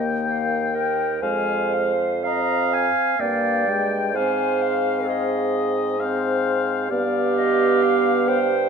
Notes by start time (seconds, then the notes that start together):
Already playing: D#2 A#3 D#4 G5
0.28 F5
0.74 A#4 G5
1.22 F2 G#3 C5 F5 G#5
1.74 F5
2.24 C4 D#5 F5 A#5
2.74 G#5
3.19 G2 A#3 D5 F5 G5
3.67 G#3 G5
4.08 D5
4.14 G#2 C4 C5 F5 G#5
4.62 F5
5.06 G#4 D#5
6.00 C4 C5 F5
6.89 G2 B3 G4 D5 F5
7.37 D#5
7.83 F5
8.28 C5 G5